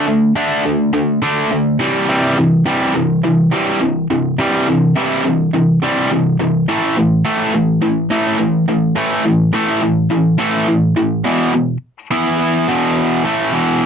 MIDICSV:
0, 0, Header, 1, 2, 480
1, 0, Start_track
1, 0, Tempo, 573066
1, 1745, Time_signature, 4, 2, 24, 8
1, 11608, End_track
2, 0, Start_track
2, 0, Title_t, "Overdriven electric guitar"
2, 0, Program_c, 0, 29
2, 61, Note_on_c, 0, 50, 68
2, 65, Note_on_c, 0, 57, 70
2, 276, Note_off_c, 0, 50, 0
2, 278, Note_off_c, 0, 57, 0
2, 297, Note_on_c, 0, 50, 80
2, 303, Note_on_c, 0, 57, 87
2, 310, Note_on_c, 0, 62, 86
2, 524, Note_off_c, 0, 50, 0
2, 527, Note_off_c, 0, 57, 0
2, 531, Note_off_c, 0, 62, 0
2, 544, Note_on_c, 0, 50, 69
2, 550, Note_on_c, 0, 57, 74
2, 759, Note_off_c, 0, 50, 0
2, 762, Note_off_c, 0, 57, 0
2, 779, Note_on_c, 0, 50, 68
2, 783, Note_on_c, 0, 57, 76
2, 997, Note_off_c, 0, 50, 0
2, 999, Note_off_c, 0, 57, 0
2, 1021, Note_on_c, 0, 50, 87
2, 1029, Note_on_c, 0, 57, 88
2, 1032, Note_on_c, 0, 62, 91
2, 1248, Note_off_c, 0, 50, 0
2, 1252, Note_off_c, 0, 57, 0
2, 1253, Note_off_c, 0, 62, 0
2, 1267, Note_on_c, 0, 50, 72
2, 1272, Note_on_c, 0, 57, 75
2, 1482, Note_off_c, 0, 50, 0
2, 1484, Note_off_c, 0, 57, 0
2, 1503, Note_on_c, 0, 48, 78
2, 1510, Note_on_c, 0, 52, 88
2, 1516, Note_on_c, 0, 55, 96
2, 1730, Note_off_c, 0, 48, 0
2, 1733, Note_off_c, 0, 52, 0
2, 1737, Note_off_c, 0, 55, 0
2, 1746, Note_on_c, 0, 48, 85
2, 1754, Note_on_c, 0, 52, 94
2, 1758, Note_on_c, 0, 55, 96
2, 1972, Note_off_c, 0, 48, 0
2, 1976, Note_off_c, 0, 52, 0
2, 1978, Note_off_c, 0, 55, 0
2, 1992, Note_on_c, 0, 48, 65
2, 1994, Note_on_c, 0, 52, 73
2, 2206, Note_off_c, 0, 48, 0
2, 2207, Note_off_c, 0, 52, 0
2, 2225, Note_on_c, 0, 48, 79
2, 2232, Note_on_c, 0, 52, 89
2, 2237, Note_on_c, 0, 55, 85
2, 2453, Note_off_c, 0, 48, 0
2, 2456, Note_off_c, 0, 52, 0
2, 2459, Note_off_c, 0, 55, 0
2, 2472, Note_on_c, 0, 48, 69
2, 2477, Note_on_c, 0, 52, 76
2, 2687, Note_off_c, 0, 48, 0
2, 2689, Note_off_c, 0, 52, 0
2, 2714, Note_on_c, 0, 48, 68
2, 2719, Note_on_c, 0, 52, 77
2, 2928, Note_off_c, 0, 48, 0
2, 2931, Note_off_c, 0, 52, 0
2, 2947, Note_on_c, 0, 48, 84
2, 2956, Note_on_c, 0, 52, 96
2, 2962, Note_on_c, 0, 55, 93
2, 3175, Note_off_c, 0, 48, 0
2, 3179, Note_off_c, 0, 52, 0
2, 3182, Note_off_c, 0, 55, 0
2, 3192, Note_on_c, 0, 48, 64
2, 3193, Note_on_c, 0, 52, 79
2, 3408, Note_off_c, 0, 48, 0
2, 3408, Note_off_c, 0, 52, 0
2, 3438, Note_on_c, 0, 48, 62
2, 3439, Note_on_c, 0, 52, 70
2, 3651, Note_off_c, 0, 48, 0
2, 3652, Note_off_c, 0, 52, 0
2, 3673, Note_on_c, 0, 48, 94
2, 3682, Note_on_c, 0, 52, 85
2, 3684, Note_on_c, 0, 55, 95
2, 3898, Note_off_c, 0, 48, 0
2, 3903, Note_off_c, 0, 52, 0
2, 3904, Note_off_c, 0, 55, 0
2, 3916, Note_on_c, 0, 48, 62
2, 3921, Note_on_c, 0, 52, 78
2, 4131, Note_off_c, 0, 48, 0
2, 4133, Note_off_c, 0, 52, 0
2, 4151, Note_on_c, 0, 48, 84
2, 4158, Note_on_c, 0, 52, 85
2, 4164, Note_on_c, 0, 55, 89
2, 4378, Note_off_c, 0, 48, 0
2, 4381, Note_off_c, 0, 52, 0
2, 4385, Note_off_c, 0, 55, 0
2, 4394, Note_on_c, 0, 48, 72
2, 4402, Note_on_c, 0, 52, 77
2, 4610, Note_off_c, 0, 48, 0
2, 4614, Note_off_c, 0, 52, 0
2, 4640, Note_on_c, 0, 48, 65
2, 4642, Note_on_c, 0, 52, 75
2, 4854, Note_off_c, 0, 48, 0
2, 4854, Note_off_c, 0, 52, 0
2, 4881, Note_on_c, 0, 48, 94
2, 4885, Note_on_c, 0, 52, 97
2, 4894, Note_on_c, 0, 55, 97
2, 5103, Note_off_c, 0, 48, 0
2, 5106, Note_off_c, 0, 52, 0
2, 5110, Note_off_c, 0, 55, 0
2, 5124, Note_on_c, 0, 48, 79
2, 5125, Note_on_c, 0, 52, 75
2, 5336, Note_off_c, 0, 48, 0
2, 5336, Note_off_c, 0, 52, 0
2, 5358, Note_on_c, 0, 48, 72
2, 5363, Note_on_c, 0, 52, 78
2, 5572, Note_off_c, 0, 48, 0
2, 5575, Note_off_c, 0, 52, 0
2, 5597, Note_on_c, 0, 45, 93
2, 5604, Note_on_c, 0, 52, 101
2, 5607, Note_on_c, 0, 57, 106
2, 5821, Note_off_c, 0, 45, 0
2, 5825, Note_off_c, 0, 52, 0
2, 5826, Note_off_c, 0, 57, 0
2, 5842, Note_on_c, 0, 45, 69
2, 5845, Note_on_c, 0, 52, 77
2, 6054, Note_off_c, 0, 45, 0
2, 6056, Note_off_c, 0, 52, 0
2, 6075, Note_on_c, 0, 45, 82
2, 6079, Note_on_c, 0, 52, 84
2, 6084, Note_on_c, 0, 57, 95
2, 6300, Note_off_c, 0, 45, 0
2, 6302, Note_off_c, 0, 52, 0
2, 6305, Note_off_c, 0, 57, 0
2, 6317, Note_on_c, 0, 45, 77
2, 6324, Note_on_c, 0, 52, 77
2, 6532, Note_off_c, 0, 45, 0
2, 6535, Note_off_c, 0, 52, 0
2, 6549, Note_on_c, 0, 45, 73
2, 6554, Note_on_c, 0, 52, 83
2, 6768, Note_off_c, 0, 45, 0
2, 6770, Note_off_c, 0, 52, 0
2, 6790, Note_on_c, 0, 45, 91
2, 6798, Note_on_c, 0, 52, 98
2, 6802, Note_on_c, 0, 57, 91
2, 7017, Note_off_c, 0, 45, 0
2, 7021, Note_off_c, 0, 52, 0
2, 7023, Note_off_c, 0, 57, 0
2, 7030, Note_on_c, 0, 45, 74
2, 7031, Note_on_c, 0, 52, 77
2, 7248, Note_off_c, 0, 45, 0
2, 7248, Note_off_c, 0, 52, 0
2, 7273, Note_on_c, 0, 45, 71
2, 7279, Note_on_c, 0, 52, 79
2, 7489, Note_off_c, 0, 45, 0
2, 7492, Note_off_c, 0, 52, 0
2, 7503, Note_on_c, 0, 45, 86
2, 7512, Note_on_c, 0, 52, 107
2, 7519, Note_on_c, 0, 57, 108
2, 7733, Note_off_c, 0, 45, 0
2, 7737, Note_off_c, 0, 52, 0
2, 7741, Note_off_c, 0, 57, 0
2, 7744, Note_on_c, 0, 45, 75
2, 7746, Note_on_c, 0, 52, 78
2, 7964, Note_off_c, 0, 45, 0
2, 7965, Note_off_c, 0, 52, 0
2, 7982, Note_on_c, 0, 45, 82
2, 7989, Note_on_c, 0, 52, 90
2, 7995, Note_on_c, 0, 57, 94
2, 8210, Note_off_c, 0, 45, 0
2, 8216, Note_off_c, 0, 52, 0
2, 8219, Note_off_c, 0, 57, 0
2, 8220, Note_on_c, 0, 45, 64
2, 8226, Note_on_c, 0, 52, 82
2, 8441, Note_off_c, 0, 45, 0
2, 8444, Note_off_c, 0, 52, 0
2, 8460, Note_on_c, 0, 45, 65
2, 8463, Note_on_c, 0, 52, 88
2, 8681, Note_off_c, 0, 45, 0
2, 8682, Note_off_c, 0, 52, 0
2, 8694, Note_on_c, 0, 45, 93
2, 8703, Note_on_c, 0, 52, 103
2, 8710, Note_on_c, 0, 57, 106
2, 8927, Note_off_c, 0, 45, 0
2, 8931, Note_off_c, 0, 52, 0
2, 8935, Note_off_c, 0, 57, 0
2, 8945, Note_on_c, 0, 45, 65
2, 8946, Note_on_c, 0, 52, 80
2, 9163, Note_off_c, 0, 45, 0
2, 9163, Note_off_c, 0, 52, 0
2, 9184, Note_on_c, 0, 45, 77
2, 9189, Note_on_c, 0, 52, 76
2, 9401, Note_off_c, 0, 45, 0
2, 9404, Note_off_c, 0, 52, 0
2, 9420, Note_on_c, 0, 40, 85
2, 9426, Note_on_c, 0, 47, 98
2, 9428, Note_on_c, 0, 52, 97
2, 9656, Note_off_c, 0, 40, 0
2, 9659, Note_off_c, 0, 47, 0
2, 9660, Note_off_c, 0, 52, 0
2, 9668, Note_on_c, 0, 40, 67
2, 9668, Note_on_c, 0, 47, 67
2, 9858, Note_off_c, 0, 40, 0
2, 9859, Note_off_c, 0, 47, 0
2, 10143, Note_on_c, 0, 52, 87
2, 10147, Note_on_c, 0, 59, 100
2, 10151, Note_on_c, 0, 64, 107
2, 10615, Note_off_c, 0, 52, 0
2, 10616, Note_off_c, 0, 59, 0
2, 10616, Note_on_c, 0, 40, 87
2, 10619, Note_off_c, 0, 64, 0
2, 10622, Note_on_c, 0, 47, 99
2, 10626, Note_on_c, 0, 52, 94
2, 11085, Note_off_c, 0, 52, 0
2, 11086, Note_off_c, 0, 47, 0
2, 11089, Note_on_c, 0, 45, 85
2, 11090, Note_off_c, 0, 40, 0
2, 11095, Note_on_c, 0, 52, 83
2, 11099, Note_on_c, 0, 57, 88
2, 11327, Note_off_c, 0, 45, 0
2, 11330, Note_off_c, 0, 52, 0
2, 11330, Note_on_c, 0, 40, 95
2, 11332, Note_off_c, 0, 57, 0
2, 11339, Note_on_c, 0, 47, 101
2, 11342, Note_on_c, 0, 52, 101
2, 11608, Note_off_c, 0, 40, 0
2, 11608, Note_off_c, 0, 47, 0
2, 11608, Note_off_c, 0, 52, 0
2, 11608, End_track
0, 0, End_of_file